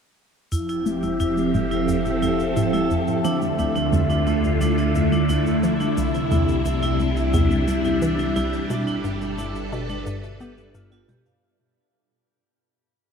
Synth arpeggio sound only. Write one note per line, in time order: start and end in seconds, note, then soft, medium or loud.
0.52 0.84 F2 medium
0.86 0.99 A3 medium
1.20 1.42 F2 medium
1.54 1.76 A2 medium
1.88 2.01 F2 medium
2.22 2.36 F2 medium
2.57 2.70 A2 medium
2.91 3.23 F2 medium
3.25 3.38 F3 medium
3.59 3.81 D2 medium
3.93 4.15 F2 medium
4.27 4.40 D2 medium
4.61 4.74 D2 medium
4.95 5.08 F2 loud
5.29 5.62 D2 medium
5.63 5.76 F3 medium
5.97 6.19 C2 medium
6.31 6.53 E2 medium
6.66 6.79 C2 medium
7.00 7.13 C2 medium
7.34 7.47 E2 loud
7.68 8.00 C2 medium
8.02 8.15 E3 medium
8.36 8.58 C2 medium
8.70 8.92 B2 medium
9.04 9.17 G2 medium
9.38 9.51 G2 medium
9.72 9.86 B2 loud
10.06 10.39 G2 medium
10.41 10.54 B3 medium
10.75 10.97 G2 medium
11.09 11.31 B2 medium